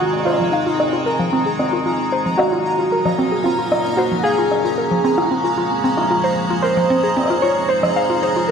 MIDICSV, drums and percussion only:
0, 0, Header, 1, 2, 480
1, 0, Start_track
1, 0, Tempo, 530973
1, 240, Time_signature, 4, 2, 24, 8
1, 7695, End_track
2, 0, Start_track
2, 0, Title_t, "Drums"
2, 121, Note_on_c, 9, 37, 22
2, 151, Note_off_c, 9, 37, 0
2, 151, Note_on_c, 9, 37, 25
2, 181, Note_off_c, 9, 37, 0
2, 181, Note_on_c, 9, 37, 28
2, 211, Note_off_c, 9, 37, 0
2, 211, Note_on_c, 9, 37, 30
2, 241, Note_off_c, 9, 37, 0
2, 241, Note_on_c, 9, 37, 35
2, 270, Note_off_c, 9, 37, 0
2, 270, Note_on_c, 9, 37, 39
2, 301, Note_off_c, 9, 37, 0
2, 301, Note_on_c, 9, 37, 41
2, 331, Note_off_c, 9, 37, 0
2, 331, Note_on_c, 9, 37, 45
2, 421, Note_off_c, 9, 37, 0
2, 721, Note_on_c, 9, 37, 73
2, 721, Note_on_c, 9, 42, 77
2, 812, Note_off_c, 9, 37, 0
2, 812, Note_off_c, 9, 42, 0
2, 1201, Note_on_c, 9, 42, 76
2, 1291, Note_off_c, 9, 42, 0
2, 1441, Note_on_c, 9, 37, 50
2, 1531, Note_off_c, 9, 37, 0
2, 1641, Note_on_c, 9, 42, 22
2, 1681, Note_off_c, 9, 42, 0
2, 1681, Note_on_c, 9, 42, 73
2, 1771, Note_off_c, 9, 42, 0
2, 2161, Note_on_c, 9, 37, 73
2, 2161, Note_on_c, 9, 42, 73
2, 2251, Note_off_c, 9, 37, 0
2, 2251, Note_off_c, 9, 42, 0
2, 2281, Note_on_c, 9, 42, 49
2, 2372, Note_off_c, 9, 42, 0
2, 2641, Note_on_c, 9, 42, 76
2, 2732, Note_off_c, 9, 42, 0
2, 2761, Note_on_c, 9, 37, 48
2, 2761, Note_on_c, 9, 42, 51
2, 2852, Note_off_c, 9, 37, 0
2, 2852, Note_off_c, 9, 42, 0
2, 3121, Note_on_c, 9, 42, 75
2, 3212, Note_off_c, 9, 42, 0
2, 3241, Note_on_c, 9, 42, 48
2, 3301, Note_off_c, 9, 42, 0
2, 3301, Note_on_c, 9, 42, 39
2, 3361, Note_off_c, 9, 42, 0
2, 3361, Note_on_c, 9, 37, 72
2, 3361, Note_on_c, 9, 42, 31
2, 3420, Note_off_c, 9, 42, 0
2, 3420, Note_on_c, 9, 42, 26
2, 3451, Note_off_c, 9, 37, 0
2, 3481, Note_off_c, 9, 42, 0
2, 3481, Note_on_c, 9, 42, 35
2, 3571, Note_off_c, 9, 42, 0
2, 3721, Note_on_c, 9, 42, 23
2, 3741, Note_off_c, 9, 42, 0
2, 3741, Note_on_c, 9, 42, 27
2, 3761, Note_off_c, 9, 42, 0
2, 3761, Note_on_c, 9, 42, 31
2, 3781, Note_off_c, 9, 42, 0
2, 3781, Note_on_c, 9, 42, 34
2, 3801, Note_off_c, 9, 42, 0
2, 3801, Note_on_c, 9, 42, 38
2, 3892, Note_off_c, 9, 42, 0
2, 4081, Note_on_c, 9, 37, 46
2, 4081, Note_on_c, 9, 42, 72
2, 4172, Note_off_c, 9, 37, 0
2, 4172, Note_off_c, 9, 42, 0
2, 4201, Note_on_c, 9, 42, 49
2, 4291, Note_off_c, 9, 42, 0
2, 4441, Note_on_c, 9, 42, 34
2, 4531, Note_off_c, 9, 42, 0
2, 4561, Note_on_c, 9, 42, 72
2, 4651, Note_off_c, 9, 42, 0
2, 4681, Note_on_c, 9, 37, 69
2, 4681, Note_on_c, 9, 42, 50
2, 4771, Note_off_c, 9, 37, 0
2, 4771, Note_off_c, 9, 42, 0
2, 5041, Note_on_c, 9, 42, 75
2, 5131, Note_off_c, 9, 42, 0
2, 5161, Note_on_c, 9, 42, 46
2, 5251, Note_off_c, 9, 42, 0
2, 5400, Note_on_c, 9, 37, 45
2, 5400, Note_on_c, 9, 42, 34
2, 5491, Note_off_c, 9, 37, 0
2, 5491, Note_off_c, 9, 42, 0
2, 5521, Note_on_c, 9, 42, 73
2, 5611, Note_off_c, 9, 42, 0
2, 5641, Note_on_c, 9, 42, 22
2, 5661, Note_off_c, 9, 42, 0
2, 5661, Note_on_c, 9, 42, 25
2, 5680, Note_off_c, 9, 42, 0
2, 5680, Note_on_c, 9, 42, 29
2, 5700, Note_off_c, 9, 42, 0
2, 5700, Note_on_c, 9, 42, 33
2, 5791, Note_off_c, 9, 42, 0
2, 5880, Note_on_c, 9, 42, 31
2, 5940, Note_off_c, 9, 42, 0
2, 5940, Note_on_c, 9, 42, 25
2, 6000, Note_off_c, 9, 42, 0
2, 6000, Note_on_c, 9, 42, 70
2, 6060, Note_off_c, 9, 42, 0
2, 6060, Note_on_c, 9, 42, 17
2, 6120, Note_off_c, 9, 42, 0
2, 6120, Note_on_c, 9, 42, 47
2, 6210, Note_off_c, 9, 42, 0
2, 6360, Note_on_c, 9, 42, 34
2, 6450, Note_off_c, 9, 42, 0
2, 6480, Note_on_c, 9, 37, 21
2, 6480, Note_on_c, 9, 42, 69
2, 6501, Note_off_c, 9, 37, 0
2, 6501, Note_on_c, 9, 37, 26
2, 6520, Note_off_c, 9, 37, 0
2, 6520, Note_on_c, 9, 37, 29
2, 6540, Note_off_c, 9, 37, 0
2, 6540, Note_on_c, 9, 37, 33
2, 6560, Note_off_c, 9, 37, 0
2, 6560, Note_on_c, 9, 37, 37
2, 6571, Note_off_c, 9, 42, 0
2, 6581, Note_off_c, 9, 37, 0
2, 6581, Note_on_c, 9, 37, 41
2, 6601, Note_on_c, 9, 42, 49
2, 6671, Note_off_c, 9, 37, 0
2, 6691, Note_off_c, 9, 42, 0
2, 6960, Note_on_c, 9, 42, 71
2, 7051, Note_off_c, 9, 42, 0
2, 7080, Note_on_c, 9, 37, 69
2, 7080, Note_on_c, 9, 42, 46
2, 7171, Note_off_c, 9, 37, 0
2, 7171, Note_off_c, 9, 42, 0
2, 7321, Note_on_c, 9, 42, 32
2, 7411, Note_off_c, 9, 42, 0
2, 7440, Note_on_c, 9, 42, 71
2, 7531, Note_off_c, 9, 42, 0
2, 7561, Note_on_c, 9, 42, 48
2, 7651, Note_off_c, 9, 42, 0
2, 7695, End_track
0, 0, End_of_file